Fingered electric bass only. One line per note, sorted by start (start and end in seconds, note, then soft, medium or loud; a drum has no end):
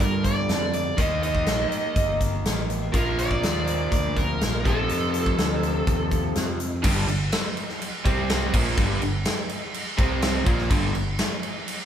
0.00 0.47 G2 medium
0.49 0.96 F2 medium
0.98 1.45 D#2 medium
1.47 1.69 A#1 medium
1.70 muted fingered electric bass stroke soft
1.96 2.43 G1 medium
2.44 2.92 A1 medium
2.94 3.41 A#1 medium
3.43 3.90 D#2 medium
3.92 4.39 D2 medium
4.42 4.88 A#1 medium
4.91 5.38 F2 medium
5.39 5.85 D2 medium
5.87 6.34 D#2 medium
6.37 6.83 F2 medium
6.84 7.07 G1 loud
7.08 7.31 G1 medium
8.05 8.50 C2 medium
8.54 8.76 A#1 medium
8.77 9.00 G1 loud
9.02 9.25 G1 medium
9.99 10.43 C2 loud
10.47 10.69 A#1 medium
10.71 10.93 G1 medium
10.97 11.18 G1 medium